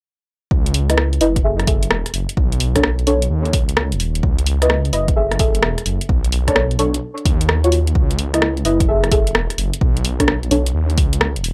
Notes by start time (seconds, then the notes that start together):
0.51 C#2, kick
0.66 closed hi-hat
0.74 open hi-hat
0.90 E4 B4 D#5, cross-stick, closed hi-hat
0.98 cross-stick
1.13 closed hi-hat
1.21 F#1 E4 B4 D#5, open hi-hat
1.36 kick, closed hi-hat
1.44 G#4 A4 E5
1.60 cross-stick, closed hi-hat
1.67 F#1 G#4 A4 E5, kick, open hi-hat
1.83 closed hi-hat
1.90 E1, cross-stick
2.06 cross-stick, closed hi-hat
2.14 F#1, open hi-hat
2.29 closed hi-hat
2.37 B1, kick
2.52 closed hi-hat
2.60 open hi-hat
2.76 D4 A4 C#5, kick, cross-stick, closed hi-hat
2.83 cross-stick
2.99 closed hi-hat
3.07 B1 D4 A4 C#5, open hi-hat
3.22 closed hi-hat
3.30 D#2
3.45 closed hi-hat
3.53 C#2, kick, open hi-hat
3.69 closed hi-hat
3.77 cross-stick
3.92 D#1, closed hi-hat
4.00 open hi-hat
4.15 closed hi-hat
4.23 C#2, kick
4.39 closed hi-hat
4.46 open hi-hat
4.62 E4 B4 D#5, cross-stick, closed hi-hat
4.70 cross-stick
4.85 closed hi-hat
4.93 F#1 E4 B4 D#5, open hi-hat
5.08 kick, closed hi-hat
5.16 G#4 A4 E5
5.32 cross-stick, closed hi-hat
5.39 F#1 G#4 A4 E5, kick, open hi-hat
5.55 closed hi-hat
5.63 E1, cross-stick
5.78 cross-stick, closed hi-hat
5.86 F#1, open hi-hat
6.01 closed hi-hat
6.09 B1, kick
6.24 closed hi-hat
6.32 open hi-hat
6.48 D4 A4 C#5, kick, cross-stick, closed hi-hat
6.56 cross-stick
6.71 closed hi-hat
6.79 B1 D4 A4 C#5, open hi-hat
6.94 closed hi-hat
7.18 closed hi-hat
7.25 D#2, kick, open hi-hat
7.41 closed hi-hat
7.49 cross-stick
7.64 F4 F#4 C#5, closed hi-hat
7.72 open hi-hat
7.87 closed hi-hat
7.95 C#2, kick
8.11 closed hi-hat
8.19 open hi-hat
8.34 E4 B4 D#5, cross-stick, closed hi-hat
8.42 cross-stick
8.57 closed hi-hat
8.65 F#1 E4 B4 D#5, open hi-hat
8.80 kick, closed hi-hat
8.88 G#4 A4 E5
9.04 cross-stick, closed hi-hat
9.11 F#1 G#4 A4 E5, kick, open hi-hat
9.27 closed hi-hat
9.35 E1, cross-stick
9.50 cross-stick, closed hi-hat
9.58 F#1, open hi-hat
9.73 closed hi-hat
9.81 B1, kick
9.97 closed hi-hat
10.05 open hi-hat
10.20 D4 A4 C#5, kick, cross-stick, closed hi-hat
10.28 cross-stick
10.43 closed hi-hat
10.51 B1 D4 A4 C#5, open hi-hat
10.66 closed hi-hat
10.74 D#2
10.90 closed hi-hat
10.98 C#2, kick, open hi-hat
11.13 closed hi-hat
11.21 cross-stick
11.36 D#1, closed hi-hat
11.44 open hi-hat